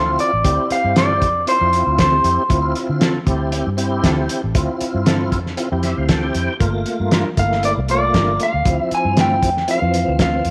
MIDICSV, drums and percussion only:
0, 0, Header, 1, 2, 480
1, 0, Start_track
1, 0, Key_signature, -1, "minor"
1, 0, Tempo, 513259
1, 416, Time_signature, 4, 2, 24, 8
1, 9824, End_track
2, 0, Start_track
2, 0, Title_t, "Drums"
2, 177, Note_on_c, 9, 42, 59
2, 271, Note_off_c, 9, 42, 0
2, 416, Note_on_c, 9, 42, 87
2, 417, Note_on_c, 9, 36, 105
2, 510, Note_off_c, 9, 42, 0
2, 511, Note_off_c, 9, 36, 0
2, 659, Note_on_c, 9, 42, 60
2, 752, Note_off_c, 9, 42, 0
2, 898, Note_on_c, 9, 42, 74
2, 903, Note_on_c, 9, 38, 99
2, 991, Note_off_c, 9, 42, 0
2, 996, Note_off_c, 9, 38, 0
2, 1138, Note_on_c, 9, 36, 85
2, 1138, Note_on_c, 9, 42, 62
2, 1232, Note_off_c, 9, 36, 0
2, 1232, Note_off_c, 9, 42, 0
2, 1378, Note_on_c, 9, 42, 71
2, 1471, Note_off_c, 9, 42, 0
2, 1617, Note_on_c, 9, 42, 48
2, 1710, Note_off_c, 9, 42, 0
2, 1856, Note_on_c, 9, 42, 67
2, 1858, Note_on_c, 9, 36, 72
2, 1860, Note_on_c, 9, 38, 100
2, 1949, Note_off_c, 9, 42, 0
2, 1952, Note_off_c, 9, 36, 0
2, 1954, Note_off_c, 9, 38, 0
2, 2098, Note_on_c, 9, 42, 59
2, 2191, Note_off_c, 9, 42, 0
2, 2338, Note_on_c, 9, 36, 104
2, 2338, Note_on_c, 9, 42, 73
2, 2431, Note_off_c, 9, 36, 0
2, 2431, Note_off_c, 9, 42, 0
2, 2575, Note_on_c, 9, 42, 53
2, 2669, Note_off_c, 9, 42, 0
2, 2814, Note_on_c, 9, 42, 71
2, 2819, Note_on_c, 9, 38, 92
2, 2908, Note_off_c, 9, 42, 0
2, 2913, Note_off_c, 9, 38, 0
2, 3054, Note_on_c, 9, 42, 61
2, 3056, Note_on_c, 9, 36, 86
2, 3148, Note_off_c, 9, 42, 0
2, 3149, Note_off_c, 9, 36, 0
2, 3293, Note_on_c, 9, 42, 72
2, 3387, Note_off_c, 9, 42, 0
2, 3535, Note_on_c, 9, 42, 61
2, 3628, Note_off_c, 9, 42, 0
2, 3775, Note_on_c, 9, 36, 77
2, 3776, Note_on_c, 9, 42, 80
2, 3780, Note_on_c, 9, 38, 98
2, 3869, Note_off_c, 9, 36, 0
2, 3869, Note_off_c, 9, 42, 0
2, 3874, Note_off_c, 9, 38, 0
2, 4015, Note_on_c, 9, 42, 69
2, 4109, Note_off_c, 9, 42, 0
2, 4254, Note_on_c, 9, 42, 82
2, 4255, Note_on_c, 9, 36, 111
2, 4347, Note_off_c, 9, 42, 0
2, 4349, Note_off_c, 9, 36, 0
2, 4494, Note_on_c, 9, 42, 61
2, 4588, Note_off_c, 9, 42, 0
2, 4734, Note_on_c, 9, 42, 79
2, 4738, Note_on_c, 9, 38, 99
2, 4827, Note_off_c, 9, 42, 0
2, 4832, Note_off_c, 9, 38, 0
2, 4976, Note_on_c, 9, 36, 77
2, 4976, Note_on_c, 9, 42, 58
2, 5069, Note_off_c, 9, 36, 0
2, 5070, Note_off_c, 9, 42, 0
2, 5109, Note_on_c, 9, 38, 31
2, 5203, Note_off_c, 9, 38, 0
2, 5212, Note_on_c, 9, 42, 67
2, 5306, Note_off_c, 9, 42, 0
2, 5451, Note_on_c, 9, 42, 50
2, 5456, Note_on_c, 9, 38, 27
2, 5545, Note_off_c, 9, 42, 0
2, 5550, Note_off_c, 9, 38, 0
2, 5692, Note_on_c, 9, 42, 68
2, 5694, Note_on_c, 9, 36, 69
2, 5696, Note_on_c, 9, 38, 93
2, 5785, Note_off_c, 9, 42, 0
2, 5788, Note_off_c, 9, 36, 0
2, 5790, Note_off_c, 9, 38, 0
2, 5934, Note_on_c, 9, 42, 61
2, 6027, Note_off_c, 9, 42, 0
2, 6177, Note_on_c, 9, 36, 110
2, 6177, Note_on_c, 9, 42, 72
2, 6270, Note_off_c, 9, 36, 0
2, 6271, Note_off_c, 9, 42, 0
2, 6413, Note_on_c, 9, 42, 53
2, 6507, Note_off_c, 9, 42, 0
2, 6653, Note_on_c, 9, 42, 67
2, 6658, Note_on_c, 9, 38, 100
2, 6746, Note_off_c, 9, 42, 0
2, 6751, Note_off_c, 9, 38, 0
2, 6895, Note_on_c, 9, 42, 64
2, 6897, Note_on_c, 9, 36, 84
2, 6989, Note_off_c, 9, 42, 0
2, 6990, Note_off_c, 9, 36, 0
2, 7034, Note_on_c, 9, 38, 30
2, 7127, Note_off_c, 9, 38, 0
2, 7136, Note_on_c, 9, 42, 71
2, 7229, Note_off_c, 9, 42, 0
2, 7374, Note_on_c, 9, 42, 53
2, 7468, Note_off_c, 9, 42, 0
2, 7614, Note_on_c, 9, 42, 72
2, 7615, Note_on_c, 9, 36, 70
2, 7619, Note_on_c, 9, 38, 97
2, 7708, Note_off_c, 9, 36, 0
2, 7708, Note_off_c, 9, 42, 0
2, 7713, Note_off_c, 9, 38, 0
2, 7852, Note_on_c, 9, 42, 67
2, 7946, Note_off_c, 9, 42, 0
2, 8094, Note_on_c, 9, 42, 84
2, 8095, Note_on_c, 9, 36, 115
2, 8187, Note_off_c, 9, 42, 0
2, 8188, Note_off_c, 9, 36, 0
2, 8336, Note_on_c, 9, 42, 54
2, 8429, Note_off_c, 9, 42, 0
2, 8573, Note_on_c, 9, 42, 73
2, 8578, Note_on_c, 9, 38, 93
2, 8667, Note_off_c, 9, 42, 0
2, 8672, Note_off_c, 9, 38, 0
2, 8814, Note_on_c, 9, 36, 87
2, 8816, Note_on_c, 9, 42, 60
2, 8908, Note_off_c, 9, 36, 0
2, 8909, Note_off_c, 9, 42, 0
2, 8951, Note_on_c, 9, 38, 32
2, 9045, Note_off_c, 9, 38, 0
2, 9052, Note_on_c, 9, 42, 75
2, 9145, Note_off_c, 9, 42, 0
2, 9293, Note_on_c, 9, 42, 55
2, 9387, Note_off_c, 9, 42, 0
2, 9530, Note_on_c, 9, 42, 75
2, 9531, Note_on_c, 9, 36, 82
2, 9535, Note_on_c, 9, 38, 98
2, 9624, Note_off_c, 9, 42, 0
2, 9625, Note_off_c, 9, 36, 0
2, 9629, Note_off_c, 9, 38, 0
2, 9770, Note_on_c, 9, 42, 64
2, 9824, Note_off_c, 9, 42, 0
2, 9824, End_track
0, 0, End_of_file